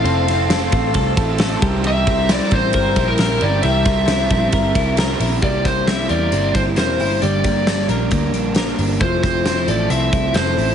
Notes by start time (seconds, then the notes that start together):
Already playing: E4 A4 C5 F5 A5 E6
0.04 F1 F3 A3 C4 E4 A4, ride
0.28 C4 E4 A4, snare, ride
0.49 A3 C4 D4 A4, snare, ride
0.72 A1 C4, kick, ride
0.94 C2 A4, kick, ride
1.17 A1 C4 E4 A4, kick, ride
1.38 A3 C4 E4 A4, snare, ride
1.43 A4
1.62 C2 G3 C4 E4 A#4 G5 A#5, kick, ride
1.84 C3 E3 G3 C4 E4 A#4 E5, ride
2.07 G3 C4 E4 A#4, kick, ride
2.29 G3 C4 E4 A#4 D5, snare, ride
2.51 A1 C4 C5, kick, ride
2.73 G1 A#4, kick, ride
2.96 A#1 G3 C4 E4 A#4, kick, ride
3.08 A#4
3.18 A#1 G3 C4 E4 A#4, snare, ride
3.41 G1 G3 C4 E4 A#4 D5 A5, ride
3.63 C2 C3 E3 G3 C4 E4 A#4 E5, ride
3.85 G3 C4 E4 A#4, kick, snare, ride
4.08 G3 C4 E4 A#4, snare, ride
4.30 A#1 C4, kick, ride
4.52 G1 A#4, kick, ride
4.75 C2 G3 C4 E4 A#4, kick, ride
4.97 G3 C4 E4 A#4, snare, ride
5.19 A#1 G3 C4 E4 A#4, open hi-hat, ride
5.42 C2 C3 G3 A#3 E4 D5, kick, closed hi-hat
5.65 C4 C5, kick, snare, closed hi-hat
5.87 C3 G3 A#3 E4 E5, snare, closed hi-hat
6.09 E2 G3 A#3 E4 A#4 D5, closed hi-hat
6.32 G1 C3 G3 A#3 C4 E4, closed hi-hat
6.54 G1 D4 C5, kick, closed hi-hat
6.66 E4
6.76 E1 C3 G3 A#3 E4 A#4 C5, snare, closed hi-hat
6.99 G1 G3 A#3 E4, open hi-hat
7.21 G1 G2 D3 G3 A#3 D4 D5, closed hi-hat
7.44 A#3, kick, snare, closed hi-hat
7.66 D3 G3 A#3 D4, snare, closed hi-hat
7.89 A#1 G3 A#3 D4 A#4, closed hi-hat
8.11 D2 G2 D3 G3 A#3 D4, kick, closed hi-hat
8.33 A#1 D4, closed hi-hat
8.55 D3 G3 A#3 D4 A#4, snare, closed hi-hat
8.78 G1 D4, open hi-hat
9.00 F1 F3 A3 C4 E4 C5, kick, closed hi-hat
9.23 C4 C5, kick, snare, closed hi-hat
9.44 F3 A3 C4 D4 E4, snare, closed hi-hat
9.57 E4
9.67 A1 A3 C4 E4 A4 D5, closed hi-hat
9.89 C2 F3 A3 C4 E4 E5, closed hi-hat
10.12 C2 E4, kick, closed hi-hat
10.34 F1 F3 A3 C4 E4 A4 C5, snare, closed hi-hat
10.57 A1 E4, open hi-hat